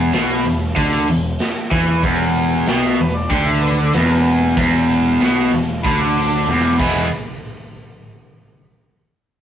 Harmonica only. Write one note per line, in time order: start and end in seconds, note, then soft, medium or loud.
2.68 2.86 G5 medium
2.84 3.00 E5 medium
2.99 3.17 B4 medium
3.16 3.32 D5 medium
3.31 3.49 G5 loud
3.47 3.64 E5 medium
3.62 3.80 B4 medium
3.79 3.93 D5 medium
3.95 4.56 B4 medium
5.84 6.02 B5 loud
6.01 6.62 D6 medium
6.64 6.77 D6 medium
6.78 7.08 B5 medium